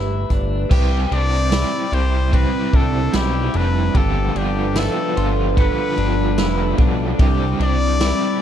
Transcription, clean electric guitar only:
0, 0, Header, 1, 2, 480
1, 0, Start_track
1, 0, Key_signature, 0, "major"
1, 0, Tempo, 810811
1, 419, Time_signature, 4, 2, 24, 8
1, 4983, End_track
2, 0, Start_track
2, 0, Title_t, "Clean electric guitar"
2, 0, Program_c, 0, 27
2, 0, Note_on_c, 0, 64, 71
2, 178, Note_off_c, 0, 64, 0
2, 179, Note_on_c, 0, 62, 64
2, 419, Note_off_c, 0, 62, 0
2, 422, Note_on_c, 0, 67, 101
2, 660, Note_off_c, 0, 67, 0
2, 660, Note_on_c, 0, 62, 79
2, 899, Note_off_c, 0, 62, 0
2, 903, Note_on_c, 0, 64, 72
2, 1137, Note_off_c, 0, 64, 0
2, 1139, Note_on_c, 0, 67, 75
2, 1378, Note_on_c, 0, 60, 88
2, 1379, Note_off_c, 0, 67, 0
2, 1618, Note_off_c, 0, 60, 0
2, 1621, Note_on_c, 0, 62, 84
2, 1859, Note_on_c, 0, 64, 92
2, 1860, Note_off_c, 0, 62, 0
2, 2097, Note_on_c, 0, 62, 76
2, 2099, Note_off_c, 0, 64, 0
2, 2337, Note_on_c, 0, 67, 105
2, 2338, Note_off_c, 0, 62, 0
2, 2578, Note_off_c, 0, 67, 0
2, 2578, Note_on_c, 0, 62, 80
2, 2817, Note_on_c, 0, 64, 78
2, 2818, Note_off_c, 0, 62, 0
2, 3056, Note_off_c, 0, 64, 0
2, 3059, Note_on_c, 0, 65, 78
2, 3297, Note_on_c, 0, 59, 83
2, 3299, Note_off_c, 0, 65, 0
2, 3533, Note_off_c, 0, 59, 0
2, 3535, Note_on_c, 0, 62, 84
2, 3777, Note_off_c, 0, 62, 0
2, 3777, Note_on_c, 0, 64, 88
2, 4015, Note_on_c, 0, 62, 80
2, 4018, Note_off_c, 0, 64, 0
2, 4257, Note_off_c, 0, 62, 0
2, 4259, Note_on_c, 0, 67, 99
2, 4498, Note_on_c, 0, 62, 89
2, 4499, Note_off_c, 0, 67, 0
2, 4738, Note_off_c, 0, 62, 0
2, 4740, Note_on_c, 0, 64, 82
2, 4975, Note_off_c, 0, 64, 0
2, 4983, End_track
0, 0, End_of_file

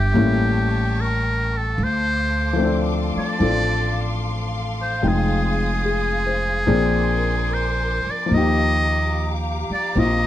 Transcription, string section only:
0, 0, Header, 1, 2, 480
1, 0, Start_track
1, 0, Tempo, 817439
1, 1040, Time_signature, 4, 2, 24, 8
1, 6029, End_track
2, 0, Start_track
2, 0, Title_t, "String section"
2, 0, Program_c, 0, 48
2, 0, Note_on_c, 0, 76, 53
2, 0, Note_on_c, 0, 79, 58
2, 0, Note_on_c, 0, 86, 67
2, 67, Note_off_c, 0, 79, 0
2, 74, Note_off_c, 0, 86, 0
2, 74, Note_on_c, 0, 79, 59
2, 76, Note_off_c, 0, 76, 0
2, 76, Note_on_c, 0, 85, 67
2, 81, Note_on_c, 0, 81, 57
2, 1026, Note_off_c, 0, 79, 0
2, 1027, Note_off_c, 0, 85, 0
2, 1030, Note_off_c, 0, 81, 0
2, 1033, Note_on_c, 0, 69, 68
2, 1035, Note_on_c, 0, 86, 75
2, 1037, Note_on_c, 0, 77, 64
2, 1037, Note_on_c, 0, 84, 57
2, 2930, Note_off_c, 0, 69, 0
2, 2931, Note_off_c, 0, 86, 0
2, 2943, Note_on_c, 0, 87, 68
2, 2945, Note_on_c, 0, 68, 60
2, 3888, Note_off_c, 0, 77, 0
2, 3888, Note_off_c, 0, 84, 0
2, 3899, Note_off_c, 0, 87, 0
2, 3900, Note_off_c, 0, 68, 0
2, 3904, Note_on_c, 0, 70, 63
2, 3904, Note_on_c, 0, 86, 69
2, 3905, Note_on_c, 0, 80, 58
2, 3910, Note_on_c, 0, 84, 59
2, 4864, Note_off_c, 0, 70, 0
2, 4865, Note_off_c, 0, 80, 0
2, 4867, Note_off_c, 0, 84, 0
2, 4873, Note_on_c, 0, 77, 59
2, 4873, Note_on_c, 0, 82, 64
2, 4875, Note_on_c, 0, 67, 63
2, 6029, Note_off_c, 0, 67, 0
2, 6029, Note_off_c, 0, 77, 0
2, 6029, Note_off_c, 0, 82, 0
2, 6029, Note_off_c, 0, 86, 0
2, 6029, End_track
0, 0, End_of_file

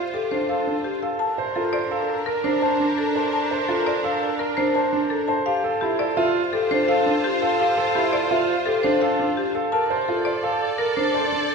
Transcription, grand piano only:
0, 0, Header, 1, 2, 480
1, 0, Start_track
1, 0, Key_signature, -1, "minor"
1, 0, Tempo, 355030
1, 1631, Time_signature, 6, 2, 24, 8
1, 15613, End_track
2, 0, Start_track
2, 0, Title_t, "Grand piano"
2, 0, Program_c, 0, 0
2, 189, Note_on_c, 0, 67, 58
2, 425, Note_on_c, 0, 62, 65
2, 502, Note_off_c, 0, 67, 0
2, 670, Note_on_c, 0, 69, 56
2, 740, Note_off_c, 0, 62, 0
2, 910, Note_on_c, 0, 62, 54
2, 982, Note_off_c, 0, 69, 0
2, 1222, Note_off_c, 0, 62, 0
2, 1388, Note_on_c, 0, 69, 61
2, 1701, Note_off_c, 0, 69, 0
2, 1869, Note_on_c, 0, 72, 72
2, 2108, Note_on_c, 0, 65, 63
2, 2182, Note_off_c, 0, 72, 0
2, 2345, Note_on_c, 0, 72, 64
2, 2422, Note_off_c, 0, 65, 0
2, 2586, Note_on_c, 0, 69, 76
2, 2660, Note_off_c, 0, 72, 0
2, 2901, Note_off_c, 0, 69, 0
2, 3066, Note_on_c, 0, 70, 62
2, 3301, Note_on_c, 0, 62, 79
2, 3381, Note_off_c, 0, 70, 0
2, 3544, Note_on_c, 0, 72, 62
2, 3619, Note_off_c, 0, 62, 0
2, 3785, Note_on_c, 0, 62, 65
2, 3860, Note_off_c, 0, 72, 0
2, 4100, Note_off_c, 0, 62, 0
2, 4268, Note_on_c, 0, 72, 63
2, 4581, Note_off_c, 0, 72, 0
2, 4748, Note_on_c, 0, 72, 79
2, 4984, Note_on_c, 0, 65, 62
2, 5061, Note_off_c, 0, 72, 0
2, 5228, Note_on_c, 0, 72, 64
2, 5300, Note_off_c, 0, 65, 0
2, 5463, Note_on_c, 0, 69, 81
2, 5541, Note_off_c, 0, 72, 0
2, 5780, Note_off_c, 0, 69, 0
2, 5941, Note_on_c, 0, 70, 66
2, 6189, Note_on_c, 0, 62, 78
2, 6259, Note_off_c, 0, 70, 0
2, 6429, Note_on_c, 0, 72, 64
2, 6502, Note_off_c, 0, 62, 0
2, 6662, Note_on_c, 0, 62, 73
2, 6742, Note_off_c, 0, 72, 0
2, 6979, Note_off_c, 0, 62, 0
2, 7145, Note_on_c, 0, 72, 74
2, 7386, Note_on_c, 0, 67, 70
2, 7460, Note_off_c, 0, 72, 0
2, 7625, Note_on_c, 0, 69, 71
2, 7701, Note_off_c, 0, 67, 0
2, 7870, Note_on_c, 0, 64, 67
2, 7940, Note_off_c, 0, 69, 0
2, 8104, Note_on_c, 0, 69, 70
2, 8182, Note_off_c, 0, 64, 0
2, 8343, Note_on_c, 0, 65, 90
2, 8420, Note_off_c, 0, 69, 0
2, 8660, Note_off_c, 0, 65, 0
2, 8829, Note_on_c, 0, 67, 67
2, 9070, Note_on_c, 0, 62, 83
2, 9142, Note_off_c, 0, 67, 0
2, 9309, Note_on_c, 0, 69, 72
2, 9382, Note_off_c, 0, 62, 0
2, 9550, Note_on_c, 0, 62, 74
2, 9622, Note_off_c, 0, 69, 0
2, 9862, Note_off_c, 0, 62, 0
2, 10033, Note_on_c, 0, 69, 78
2, 10273, Note_on_c, 0, 67, 73
2, 10343, Note_off_c, 0, 69, 0
2, 10512, Note_on_c, 0, 69, 82
2, 10583, Note_off_c, 0, 67, 0
2, 10753, Note_on_c, 0, 64, 74
2, 10823, Note_off_c, 0, 69, 0
2, 10994, Note_on_c, 0, 69, 70
2, 11063, Note_off_c, 0, 64, 0
2, 11235, Note_on_c, 0, 65, 87
2, 11304, Note_off_c, 0, 69, 0
2, 11544, Note_off_c, 0, 65, 0
2, 11717, Note_on_c, 0, 67, 68
2, 11956, Note_on_c, 0, 62, 93
2, 12025, Note_off_c, 0, 67, 0
2, 12193, Note_on_c, 0, 69, 68
2, 12264, Note_off_c, 0, 62, 0
2, 12432, Note_on_c, 0, 62, 70
2, 12503, Note_off_c, 0, 69, 0
2, 12743, Note_off_c, 0, 62, 0
2, 12913, Note_on_c, 0, 69, 67
2, 13153, Note_on_c, 0, 70, 69
2, 13223, Note_off_c, 0, 69, 0
2, 13390, Note_on_c, 0, 72, 73
2, 13463, Note_off_c, 0, 70, 0
2, 13636, Note_on_c, 0, 65, 65
2, 13702, Note_off_c, 0, 72, 0
2, 13872, Note_on_c, 0, 72, 63
2, 13944, Note_off_c, 0, 65, 0
2, 14112, Note_on_c, 0, 69, 74
2, 14183, Note_off_c, 0, 72, 0
2, 14423, Note_off_c, 0, 69, 0
2, 14588, Note_on_c, 0, 70, 63
2, 14830, Note_on_c, 0, 62, 71
2, 14902, Note_off_c, 0, 70, 0
2, 15069, Note_on_c, 0, 72, 62
2, 15142, Note_off_c, 0, 62, 0
2, 15311, Note_on_c, 0, 62, 62
2, 15382, Note_off_c, 0, 72, 0
2, 15613, Note_off_c, 0, 62, 0
2, 15613, End_track
0, 0, End_of_file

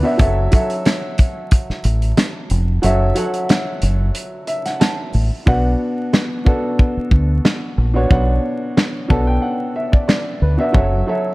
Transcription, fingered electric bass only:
0, 0, Header, 1, 3, 480
1, 0, Start_track
1, 0, Key_signature, 2, "minor"
1, 0, Tempo, 659341
1, 143, Time_signature, 4, 2, 24, 8
1, 8260, End_track
2, 0, Start_track
2, 0, Title_t, "Fingered electric bass"
2, 0, Program_c, 0, 33
2, 144, Note_on_c, 0, 30, 114
2, 340, Note_off_c, 0, 30, 0
2, 1345, Note_on_c, 0, 33, 100
2, 1541, Note_off_c, 0, 33, 0
2, 1825, Note_on_c, 0, 29, 98
2, 2021, Note_off_c, 0, 29, 0
2, 2066, Note_on_c, 0, 30, 111
2, 2262, Note_off_c, 0, 30, 0
2, 2785, Note_on_c, 0, 30, 96
2, 2981, Note_off_c, 0, 30, 0
2, 3745, Note_on_c, 0, 33, 85
2, 3851, Note_off_c, 0, 33, 0
2, 3983, Note_on_c, 0, 35, 106
2, 4180, Note_off_c, 0, 35, 0
2, 5179, Note_on_c, 0, 38, 90
2, 5378, Note_off_c, 0, 38, 0
2, 5663, Note_on_c, 0, 34, 88
2, 5860, Note_off_c, 0, 34, 0
2, 5903, Note_on_c, 0, 35, 104
2, 6100, Note_off_c, 0, 35, 0
2, 6628, Note_on_c, 0, 35, 90
2, 6823, Note_off_c, 0, 35, 0
2, 7585, Note_on_c, 0, 38, 89
2, 7691, Note_off_c, 0, 38, 0
2, 7823, Note_on_c, 0, 30, 107
2, 8020, Note_off_c, 0, 30, 0
2, 8260, End_track
3, 0, Start_track
3, 0, Title_t, "Muted fingered electric bass strokes"
3, 1235, Note_on_c, 9, 29, 50
3, 1307, Note_off_c, 9, 29, 0
3, 5075, Note_on_c, 9, 29, 45
3, 5148, Note_off_c, 9, 29, 0
3, 8260, End_track
0, 0, End_of_file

